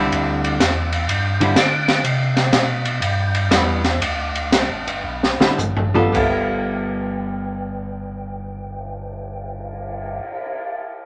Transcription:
0.00 0.11 C2 medium
0.00 0.58 D3 medium
0.00 0.58 G3 medium
0.00 0.58 C4 medium
0.00 0.59 E4 medium
0.12 0.59 D2 medium
0.12 ride soft
0.44 ride soft
0.60 1.07 E2 medium
0.60 snare medium
0.60 hi-hat pedal medium
0.60 ride medium
0.92 ride soft
1.08 1.55 G2 medium
1.08 ride medium
1.41 1.55 D3 medium
1.41 1.56 G3 medium
1.41 1.56 C4 medium
1.41 1.56 E4 medium
1.41 ride soft
1.56 2.03 D3 medium
1.56 snare medium
1.56 hi-hat pedal medium
1.56 ride medium
1.88 snare medium
1.88 ride soft
2.04 2.52 C3 medium
2.04 ride medium
2.37 snare soft
2.37 ride soft
2.53 3.00 B2 medium
2.53 snare medium
2.53 hi-hat pedal soft
2.53 ride medium
2.85 ride soft
3.01 3.49 G2 medium
3.01 ride medium
3.35 ride soft
3.51 4.00 E2 medium
3.51 3.81 G3 medium
3.51 3.81 B3 medium
3.51 3.82 E4 medium
3.51 snare medium
3.51 hi-hat pedal medium
3.51 ride medium
3.84 snare soft
3.84 ride soft
4.01 4.51 D2 medium
4.01 ride medium
4.35 ride soft
4.52 4.70 C2 medium
4.52 snare medium
4.52 hi-hat pedal medium
4.52 ride medium
4.69 4.87 A1 medium
4.87 5.04 G1 medium
4.87 ride soft
5.04 5.38 B1 medium
5.23 snare soft
5.40 5.49 B1 soft
5.40 5.57 D3 medium
5.40 5.57 G3 medium
5.40 5.57 C4 medium
5.40 5.57 E4 medium
5.40 snare medium
5.58 6.12 A1 medium
5.58 floor tom medium
5.58 hi-hat pedal medium
5.77 floor tom medium
5.94 6.11 G3 medium
5.94 6.12 B3 medium
5.94 6.13 F4 medium
5.94 6.13 A4 medium
5.94 floor tom medium
6.12 10.19 G1 medium
6.12 10.21 G3 medium
6.12 10.22 B3 medium
6.12 10.23 F4 medium
6.12 10.24 A4 medium
6.12 kick soft
6.12 crash medium
6.52 cymbal swell soft

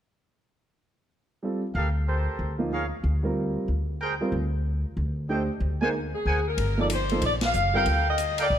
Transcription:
1.43 1.60 G3 soft
1.43 1.61 C4 soft
1.43 1.61 F4 soft
1.43 1.61 A4 soft
1.74 2.26 D2 medium
1.74 1.88 G4 medium
1.74 1.88 A4 medium
1.74 1.88 A#4 medium
1.74 1.88 F5 medium
2.07 2.55 G4 medium
2.07 2.55 A4 medium
2.07 2.55 A#4 medium
2.07 2.55 C5 medium
2.39 2.90 D2 medium
2.58 2.70 F3 soft
2.58 2.70 A#3 soft
2.58 2.70 D#4 soft
2.58 2.71 F4 medium
2.72 2.85 G#4 medium
2.72 2.85 A#4 medium
2.72 2.85 C#5 medium
2.72 2.85 F5 medium
3.04 3.54 D2 medium
3.23 3.65 G3 soft
3.23 3.66 C4 soft
3.23 3.66 F4 soft
3.23 3.66 A#4 medium
3.68 4.19 D2 medium
4.00 4.14 G#4 medium
4.00 4.14 A#4 medium
4.00 4.14 C5 medium
4.00 4.14 G5 medium
4.21 4.32 G3 medium
4.21 4.32 C4 medium
4.21 4.32 F4 medium
4.21 4.32 A#4 medium
4.32 4.83 D2 medium
4.97 5.47 D2 medium
5.29 5.47 A3 soft
5.29 5.47 D4 soft
5.29 5.47 G4 soft
5.29 5.42 A4 medium
5.29 5.42 C5 medium
5.29 5.47 C5 soft
5.29 5.42 D#5 medium
5.29 5.42 G5 medium
5.60 6.11 D2 medium
5.81 5.92 A#3 medium
5.81 5.93 D#4 medium
5.81 5.93 G#4 medium
5.81 5.89 A#4 medium
5.81 5.93 A#4 medium
5.81 5.89 C5 medium
5.81 5.89 F#5 medium
5.81 5.89 G#5 medium
6.15 6.44 G#4 medium
6.26 6.55 D2 medium
6.26 6.39 A#4 medium
6.26 6.39 C5 medium
6.26 6.39 F#5 medium
6.26 6.39 G#5 medium
6.48 6.79 A#4 medium
6.57 7.18 G1 medium
6.57 kick soft
6.57 ride medium
6.78 6.89 F3 medium
6.78 6.89 A#3 soft
6.78 6.89 D#4 soft
6.78 6.89 A4 medium
6.78 6.86 D5 medium
6.90 7.21 C5 medium
6.90 hi-hat pedal medium
6.90 ride medium
7.09 7.21 F3 soft
7.09 7.22 A#3 soft
7.09 7.21 D#4 soft
7.09 7.22 A4 medium
7.09 ride soft
7.22 7.52 A#1 medium
7.22 7.33 D5 medium
7.22 kick soft
7.22 ride medium
7.41 snare medium
7.41 ride medium
7.46 7.74 F5 loud
7.53 7.84 F#1 medium
7.53 hi-hat pedal medium
7.74 7.85 G3 medium
7.74 7.85 C4 soft
7.74 7.85 F4 medium
7.74 8.16 A4 medium
7.74 8.16 A#4 medium
7.74 7.85 A#4 medium
7.74 8.16 F5 medium
7.74 8.05 F5 medium
7.74 8.16 G5 medium
7.86 8.47 D2 medium
7.86 kick soft
7.86 ride medium
8.09 8.37 D#5 medium
8.18 hi-hat pedal medium
8.18 ride medium
8.38 8.46 A4 medium
8.38 8.46 A#4 medium
8.38 8.59 D5 medium
8.38 8.46 F5 medium
8.38 8.46 G5 medium
8.38 ride medium
8.50 8.59 A#1 medium
8.50 kick soft

